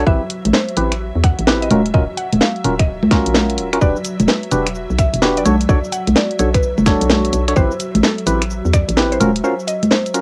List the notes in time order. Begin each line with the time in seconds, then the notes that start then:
Already playing: F#3 E5
0.06 A1 C4 E4 G4 B4 E5, kick
0.30 open hi-hat
0.45 A1, closed hi-hat, high conga
0.53 C5, snare
0.68 closed hi-hat
0.77 A1 C4 E4 G4 B4, open hi-hat
0.92 finger snap, closed hi-hat
1.15 E2
1.24 F#5, finger snap, kick, open hi-hat
1.39 A1, closed hi-hat
1.47 C4 E4 G4 B4, snare
1.62 D#5, closed hi-hat
1.70 D#1 C#4 F4 F#4 A#4, open hi-hat, high conga
1.86 closed hi-hat
1.94 D#1 C#4 F4 F#4 A#4 D#5, kick
2.17 F#5, open hi-hat
2.32 D#1, closed hi-hat, high conga
2.41 F5, snare
2.56 closed hi-hat
2.64 D#1 C#4 F4 F#4 A#4, open hi-hat
2.79 D#5, finger snap, kick, closed hi-hat
3.03 C#2, high conga
3.11 C#4 F4 F#4 A#4, finger snap, kick, snare, open hi-hat
3.26 A#1, closed hi-hat
3.35 snare, high conga
3.50 closed hi-hat
3.58 D#1, open hi-hat
3.73 C#4 F4 F#4 A#4, finger snap, closed hi-hat
3.81 E1 D4 F#4 G4 B4 D5, kick, cabasa
3.96 cabasa
4.05 open hi-hat, cabasa
4.20 E1, closed hi-hat, high conga, cabasa
4.28 B4, snare, cabasa
4.43 closed hi-hat
4.51 E1 D4 F#4 G4 B4, open hi-hat, cabasa
4.67 finger snap, closed hi-hat, cabasa
4.75 cabasa
4.90 B1, cabasa
4.99 E5, finger snap, kick, open hi-hat, cabasa
5.14 E1, closed hi-hat, cabasa
5.22 D4 F#4 G4 B4, snare, cabasa
5.37 D5, closed hi-hat, cabasa
5.45 B1 D4 F#4 A4 C#5, open hi-hat, high conga, cabasa
5.61 closed hi-hat, cabasa
5.69 B1 D4 F#4 A4 C#5 D5, kick, cabasa
5.84 cabasa
5.92 F#5, open hi-hat, cabasa
6.07 B1, closed hi-hat, high conga, cabasa
6.16 D5, snare, cabasa
6.31 closed hi-hat
6.39 B1 D4 F#4 A4 C#5, open hi-hat, cabasa
6.54 B4, finger snap, kick, closed hi-hat, cabasa
6.63 cabasa
6.78 F#1, high conga, cabasa
6.86 D4 F#4 A4 C#5, finger snap, kick, snare, open hi-hat, cabasa
7.01 B1, closed hi-hat, cabasa
7.10 snare, high conga, cabasa
7.25 closed hi-hat, cabasa
7.33 B1, open hi-hat, cabasa
7.48 D4 F#4 A4 C#5, finger snap, closed hi-hat, cabasa
7.56 A1 C4 E4 G4 B4 C5, kick, cabasa
7.71 cabasa
7.80 open hi-hat, cabasa
7.95 A1, closed hi-hat, high conga, cabasa
8.03 A4, snare, cabasa
8.18 closed hi-hat
8.27 A1 C4 E4 G4 B4, open hi-hat, cabasa
8.42 finger snap, closed hi-hat, cabasa
8.50 cabasa
8.65 E2, cabasa
8.74 D5, finger snap, kick, open hi-hat, cabasa
8.89 A1, closed hi-hat, cabasa
8.97 C4 E4 G4 B4, snare, cabasa
9.12 C5, closed hi-hat, cabasa
9.20 D#1 C#4 F4 F#4 A#4, open hi-hat, high conga, cabasa
9.36 closed hi-hat, cabasa
9.44 C#4 F4 F#4 A#4 C5, cabasa
9.59 cabasa
9.67 D#5, open hi-hat, cabasa
9.83 closed hi-hat, high conga, cabasa
9.91 C5, snare, cabasa
10.06 closed hi-hat, cabasa
10.14 C#4 F4 F#4 A#4, open hi-hat, cabasa